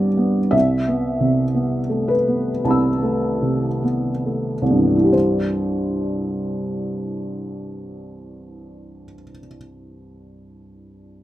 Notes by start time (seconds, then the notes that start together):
Already playing: G2 G3 B3 D5
0.17 B3
0.51 C2 E5
0.88 B3
1.20 C3
1.54 B3
1.89 A3
2.08 B4
2.27 B3
2.65 C2 A5 B5
2.70 E6
3.02 A3
3.42 C3
3.83 B3
4.26 A3
4.62 C2
4.69 G2 B3
4.78 E3
4.87 G3
4.96 E4
5.04 G4
5.12 C5